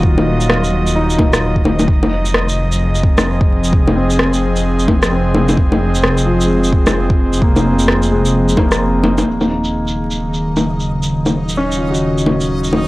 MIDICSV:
0, 0, Header, 1, 6, 480
1, 0, Start_track
1, 0, Tempo, 461538
1, 37, Time_signature, 4, 2, 24, 8
1, 13392, End_track
2, 0, Start_track
2, 0, Title_t, "Synth texture"
2, 0, Program_c, 0, 99
2, 9642, Note_on_c, 0, 63, 78
2, 9644, Note_on_c, 0, 75, 80
2, 13392, Note_off_c, 0, 63, 0
2, 13392, Note_off_c, 0, 75, 0
2, 13392, End_track
3, 0, Start_track
3, 0, Title_t, "Upright piano"
3, 0, Program_c, 1, 0
3, 0, Control_c, 1, 64, 127
3, 0, Note_on_c, 1, 58, 53
3, 0, Note_on_c, 1, 63, 56
3, 0, Note_on_c, 1, 65, 78
3, 0, Note_on_c, 1, 66, 54
3, 178, Note_off_c, 1, 58, 0
3, 898, Note_off_c, 1, 63, 0
3, 993, Note_on_c, 1, 63, 68
3, 1039, Note_off_c, 1, 66, 0
3, 1139, Note_off_c, 1, 65, 0
3, 1972, Control_c, 1, 64, 0
3, 2150, Control_c, 1, 64, 127
3, 2154, Note_off_c, 1, 63, 0
3, 4115, Note_on_c, 1, 60, 56
3, 5304, Note_off_c, 1, 60, 0
3, 5319, Note_on_c, 1, 60, 57
3, 6513, Note_on_c, 1, 53, 57
3, 6661, Note_off_c, 1, 60, 0
3, 6717, Note_on_c, 1, 56, 54
3, 7716, Note_on_c, 1, 58, 68
3, 7858, Note_off_c, 1, 53, 0
3, 7999, Note_off_c, 1, 56, 0
3, 8438, Note_on_c, 1, 56, 66
3, 8904, Note_off_c, 1, 58, 0
3, 8920, Note_on_c, 1, 58, 77
3, 9651, Control_c, 1, 64, 0
3, 9780, Note_off_c, 1, 56, 0
3, 9830, Control_c, 1, 64, 127
3, 9837, Note_off_c, 1, 58, 0
3, 9875, Note_on_c, 1, 63, 42
3, 11219, Note_off_c, 1, 63, 0
3, 12035, Note_on_c, 1, 61, 74
3, 12234, Note_on_c, 1, 65, 43
3, 12380, Note_on_c, 1, 66, 49
3, 13379, Note_off_c, 1, 61, 0
3, 13392, Note_off_c, 1, 65, 0
3, 13392, Note_off_c, 1, 66, 0
3, 13392, End_track
4, 0, Start_track
4, 0, Title_t, "Analog synth pad"
4, 0, Program_c, 2, 89
4, 0, Note_on_c, 2, 51, 83
4, 0, Note_on_c, 2, 54, 76
4, 0, Note_on_c, 2, 75, 87
4, 1957, Note_off_c, 2, 54, 0
4, 1958, Note_off_c, 2, 51, 0
4, 1961, Note_on_c, 2, 53, 74
4, 2534, Note_on_c, 2, 60, 79
4, 2600, Note_on_c, 2, 68, 71
4, 9637, Note_off_c, 2, 60, 0
4, 9637, Note_on_c, 2, 51, 66
4, 9639, Note_off_c, 2, 53, 0
4, 9639, Note_off_c, 2, 75, 0
4, 10140, Note_on_c, 2, 49, 71
4, 10152, Note_on_c, 2, 54, 67
4, 10942, Note_off_c, 2, 68, 0
4, 11477, Note_on_c, 2, 75, 66
4, 13392, Note_off_c, 2, 49, 0
4, 13392, Note_off_c, 2, 51, 0
4, 13392, Note_off_c, 2, 54, 0
4, 13392, Note_off_c, 2, 75, 0
4, 13392, End_track
5, 0, Start_track
5, 0, Title_t, "Detuned saw bass"
5, 0, Program_c, 3, 39
5, 0, Note_on_c, 3, 27, 86
5, 1939, Note_off_c, 3, 27, 0
5, 1954, Note_on_c, 3, 29, 85
5, 9618, Note_off_c, 3, 29, 0
5, 9634, Note_on_c, 3, 27, 79
5, 13392, Note_off_c, 3, 27, 0
5, 13392, End_track
6, 0, Start_track
6, 0, Title_t, "Drums"
6, 34, Note_on_c, 9, 36, 110
6, 138, Note_off_c, 9, 36, 0
6, 184, Note_on_c, 9, 61, 47
6, 288, Note_off_c, 9, 61, 0
6, 424, Note_on_c, 9, 82, 50
6, 514, Note_on_c, 9, 37, 109
6, 528, Note_off_c, 9, 82, 0
6, 618, Note_off_c, 9, 37, 0
6, 665, Note_on_c, 9, 82, 42
6, 769, Note_off_c, 9, 82, 0
6, 906, Note_on_c, 9, 82, 50
6, 1010, Note_off_c, 9, 82, 0
6, 1146, Note_on_c, 9, 82, 42
6, 1233, Note_on_c, 9, 36, 105
6, 1238, Note_on_c, 9, 61, 58
6, 1250, Note_off_c, 9, 82, 0
6, 1337, Note_off_c, 9, 36, 0
6, 1342, Note_off_c, 9, 61, 0
6, 1388, Note_on_c, 9, 37, 100
6, 1388, Note_on_c, 9, 82, 52
6, 1492, Note_off_c, 9, 37, 0
6, 1492, Note_off_c, 9, 82, 0
6, 1624, Note_on_c, 9, 36, 58
6, 1719, Note_on_c, 9, 61, 59
6, 1728, Note_off_c, 9, 36, 0
6, 1823, Note_off_c, 9, 61, 0
6, 1866, Note_on_c, 9, 61, 59
6, 1866, Note_on_c, 9, 82, 52
6, 1954, Note_on_c, 9, 36, 105
6, 1970, Note_off_c, 9, 61, 0
6, 1970, Note_off_c, 9, 82, 0
6, 2058, Note_off_c, 9, 36, 0
6, 2109, Note_on_c, 9, 61, 50
6, 2213, Note_off_c, 9, 61, 0
6, 2346, Note_on_c, 9, 82, 48
6, 2436, Note_on_c, 9, 37, 103
6, 2450, Note_off_c, 9, 82, 0
6, 2540, Note_off_c, 9, 37, 0
6, 2588, Note_on_c, 9, 82, 41
6, 2692, Note_off_c, 9, 82, 0
6, 2830, Note_on_c, 9, 82, 51
6, 2934, Note_off_c, 9, 82, 0
6, 3069, Note_on_c, 9, 82, 38
6, 3156, Note_on_c, 9, 36, 104
6, 3173, Note_off_c, 9, 82, 0
6, 3260, Note_off_c, 9, 36, 0
6, 3307, Note_on_c, 9, 37, 103
6, 3307, Note_on_c, 9, 61, 59
6, 3307, Note_on_c, 9, 82, 52
6, 3411, Note_off_c, 9, 37, 0
6, 3411, Note_off_c, 9, 61, 0
6, 3411, Note_off_c, 9, 82, 0
6, 3546, Note_on_c, 9, 36, 101
6, 3650, Note_off_c, 9, 36, 0
6, 3787, Note_on_c, 9, 82, 50
6, 3877, Note_on_c, 9, 36, 106
6, 3891, Note_off_c, 9, 82, 0
6, 3981, Note_off_c, 9, 36, 0
6, 4030, Note_on_c, 9, 61, 55
6, 4134, Note_off_c, 9, 61, 0
6, 4267, Note_on_c, 9, 82, 51
6, 4359, Note_on_c, 9, 37, 96
6, 4371, Note_off_c, 9, 82, 0
6, 4463, Note_off_c, 9, 37, 0
6, 4508, Note_on_c, 9, 82, 42
6, 4612, Note_off_c, 9, 82, 0
6, 4746, Note_on_c, 9, 82, 49
6, 4850, Note_off_c, 9, 82, 0
6, 4987, Note_on_c, 9, 82, 39
6, 5076, Note_on_c, 9, 36, 95
6, 5078, Note_on_c, 9, 61, 60
6, 5091, Note_off_c, 9, 82, 0
6, 5180, Note_off_c, 9, 36, 0
6, 5182, Note_off_c, 9, 61, 0
6, 5228, Note_on_c, 9, 37, 99
6, 5228, Note_on_c, 9, 82, 51
6, 5332, Note_off_c, 9, 37, 0
6, 5332, Note_off_c, 9, 82, 0
6, 5559, Note_on_c, 9, 61, 59
6, 5663, Note_off_c, 9, 61, 0
6, 5708, Note_on_c, 9, 61, 65
6, 5708, Note_on_c, 9, 82, 52
6, 5796, Note_on_c, 9, 36, 102
6, 5812, Note_off_c, 9, 61, 0
6, 5812, Note_off_c, 9, 82, 0
6, 5900, Note_off_c, 9, 36, 0
6, 5948, Note_on_c, 9, 61, 55
6, 6052, Note_off_c, 9, 61, 0
6, 6187, Note_on_c, 9, 82, 50
6, 6276, Note_on_c, 9, 37, 96
6, 6291, Note_off_c, 9, 82, 0
6, 6380, Note_off_c, 9, 37, 0
6, 6425, Note_on_c, 9, 82, 44
6, 6529, Note_off_c, 9, 82, 0
6, 6666, Note_on_c, 9, 82, 54
6, 6770, Note_off_c, 9, 82, 0
6, 6907, Note_on_c, 9, 82, 41
6, 6995, Note_on_c, 9, 36, 98
6, 7011, Note_off_c, 9, 82, 0
6, 7099, Note_off_c, 9, 36, 0
6, 7143, Note_on_c, 9, 37, 98
6, 7143, Note_on_c, 9, 61, 65
6, 7143, Note_on_c, 9, 82, 54
6, 7247, Note_off_c, 9, 37, 0
6, 7247, Note_off_c, 9, 61, 0
6, 7247, Note_off_c, 9, 82, 0
6, 7384, Note_on_c, 9, 36, 96
6, 7488, Note_off_c, 9, 36, 0
6, 7627, Note_on_c, 9, 82, 57
6, 7714, Note_on_c, 9, 36, 107
6, 7731, Note_off_c, 9, 82, 0
6, 7818, Note_off_c, 9, 36, 0
6, 7865, Note_on_c, 9, 61, 54
6, 7865, Note_on_c, 9, 82, 31
6, 7969, Note_off_c, 9, 61, 0
6, 7969, Note_off_c, 9, 82, 0
6, 8104, Note_on_c, 9, 82, 56
6, 8196, Note_on_c, 9, 37, 98
6, 8208, Note_off_c, 9, 82, 0
6, 8300, Note_off_c, 9, 37, 0
6, 8347, Note_on_c, 9, 82, 43
6, 8451, Note_off_c, 9, 82, 0
6, 8587, Note_on_c, 9, 82, 52
6, 8691, Note_off_c, 9, 82, 0
6, 8828, Note_on_c, 9, 82, 44
6, 8915, Note_on_c, 9, 36, 99
6, 8917, Note_on_c, 9, 61, 64
6, 8932, Note_off_c, 9, 82, 0
6, 9019, Note_off_c, 9, 36, 0
6, 9021, Note_off_c, 9, 61, 0
6, 9066, Note_on_c, 9, 37, 95
6, 9066, Note_on_c, 9, 82, 55
6, 9170, Note_off_c, 9, 37, 0
6, 9170, Note_off_c, 9, 82, 0
6, 9397, Note_on_c, 9, 61, 67
6, 9501, Note_off_c, 9, 61, 0
6, 9548, Note_on_c, 9, 61, 70
6, 9548, Note_on_c, 9, 82, 58
6, 9652, Note_off_c, 9, 61, 0
6, 9652, Note_off_c, 9, 82, 0
6, 9786, Note_on_c, 9, 61, 49
6, 9786, Note_on_c, 9, 82, 42
6, 9890, Note_off_c, 9, 61, 0
6, 9890, Note_off_c, 9, 82, 0
6, 10029, Note_on_c, 9, 82, 50
6, 10133, Note_off_c, 9, 82, 0
6, 10270, Note_on_c, 9, 82, 42
6, 10374, Note_off_c, 9, 82, 0
6, 10512, Note_on_c, 9, 82, 49
6, 10616, Note_off_c, 9, 82, 0
6, 10752, Note_on_c, 9, 82, 28
6, 10856, Note_off_c, 9, 82, 0
6, 10991, Note_on_c, 9, 61, 58
6, 10991, Note_on_c, 9, 82, 51
6, 11095, Note_off_c, 9, 61, 0
6, 11095, Note_off_c, 9, 82, 0
6, 11231, Note_on_c, 9, 82, 28
6, 11335, Note_off_c, 9, 82, 0
6, 11469, Note_on_c, 9, 82, 53
6, 11573, Note_off_c, 9, 82, 0
6, 11710, Note_on_c, 9, 61, 50
6, 11710, Note_on_c, 9, 82, 40
6, 11814, Note_off_c, 9, 61, 0
6, 11814, Note_off_c, 9, 82, 0
6, 11948, Note_on_c, 9, 82, 52
6, 12052, Note_off_c, 9, 82, 0
6, 12187, Note_on_c, 9, 82, 40
6, 12291, Note_off_c, 9, 82, 0
6, 12424, Note_on_c, 9, 82, 48
6, 12528, Note_off_c, 9, 82, 0
6, 12668, Note_on_c, 9, 82, 29
6, 12755, Note_on_c, 9, 61, 54
6, 12772, Note_off_c, 9, 82, 0
6, 12859, Note_off_c, 9, 61, 0
6, 12905, Note_on_c, 9, 82, 51
6, 13009, Note_off_c, 9, 82, 0
6, 13145, Note_on_c, 9, 82, 29
6, 13236, Note_on_c, 9, 61, 60
6, 13249, Note_off_c, 9, 82, 0
6, 13340, Note_off_c, 9, 61, 0
6, 13392, End_track
0, 0, End_of_file